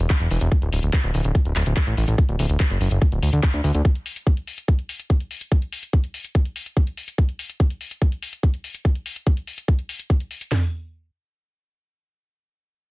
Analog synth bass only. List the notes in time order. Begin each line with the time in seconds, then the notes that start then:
0.20 E1
0.31 E1
0.41 E1
0.62 D1
0.72 D1
0.83 D1
1.04 D1
1.14 D1
1.25 D1
1.45 D1
1.56 D1
1.66 D1
1.87 A1
1.97 A1
2.08 A1
2.29 D1
2.39 D1
2.50 D1
2.70 F#1
2.81 F#1
2.91 F#1
3.12 D1
3.22 D2
3.33 D2
3.54 D2
3.64 D2
3.75 D2